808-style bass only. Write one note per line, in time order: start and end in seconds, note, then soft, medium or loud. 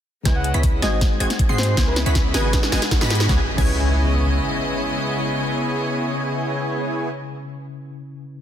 0.25 0.52 C#2 loud
0.54 0.81 C#2 medium
0.82 1.19 G#1 medium
1.20 1.27 G#1 medium
1.49 1.76 G#2 medium
1.77 2.04 C#2 loud
2.06 2.32 C#2 medium
2.34 2.70 G#1 medium
2.72 2.79 G#1 medium
3.01 3.28 G#2 medium
3.29 3.40 C#2 loud
3.58 4.39 C#2 medium